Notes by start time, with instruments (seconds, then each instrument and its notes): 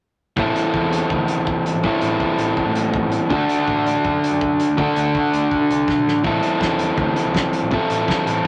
0.37 picked electric bass A1, overdriven electric guitar A2 E3 A3 C4 E4 A4, kick
0.56 closed hi-hat
0.74 picked electric bass E2, kick
0.93 closed hi-hat
1.10 picked electric bass D2, kick
1.28 closed hi-hat
1.37 picked electric bass C2
1.47 kick
1.66 closed hi-hat
1.74 picked electric bass A1
1.83 overdriven electric guitar A2 E3 A3 C4 E4, kick
1.87 overdriven electric guitar A4
2.01 picked electric bass A1, closed hi-hat
2.20 kick
2.38 picked electric bass A1, closed hi-hat
2.57 kick
2.66 picked electric bass A2
2.75 closed hi-hat
2.94 kick
3.03 picked electric bass A1
3.12 closed hi-hat
3.29 picked electric bass D2, overdriven electric guitar D3 A3 D4 F#4, kick
3.33 overdriven electric guitar A4
3.49 closed hi-hat
3.68 picked electric bass A1, kick
3.86 closed hi-hat
4.05 picked electric bass F#2, kick
4.24 closed hi-hat
4.32 picked electric bass F#2
4.41 kick
4.60 closed hi-hat
4.69 picked electric bass D2
4.77 overdriven electric guitar D3 A3 D4 F#4 A4, kick
4.96 picked electric bass D2, closed hi-hat
5.15 kick
5.33 picked electric bass D2, closed hi-hat
5.51 kick
5.61 picked electric bass D3
5.70 picked electric bass C2, closed hi-hat
5.88 picked electric bass B1, kick, snare
6.06 picked electric bass A1, snare
6.23 picked electric bass A1, overdriven electric guitar A2 E3 A3 C4 E4 A4, kick
6.43 closed hi-hat
6.61 picked electric bass E2, kick, snare
6.79 closed hi-hat
6.98 picked electric bass D2, kick
7.16 closed hi-hat
7.25 picked electric bass C2
7.35 kick, snare
7.53 closed hi-hat
7.63 picked electric bass A1
7.71 overdriven electric guitar A2 E3 A3 C4 E4 A4, kick
7.90 picked electric bass A1, closed hi-hat
8.08 kick, snare
8.25 picked electric bass A1, closed hi-hat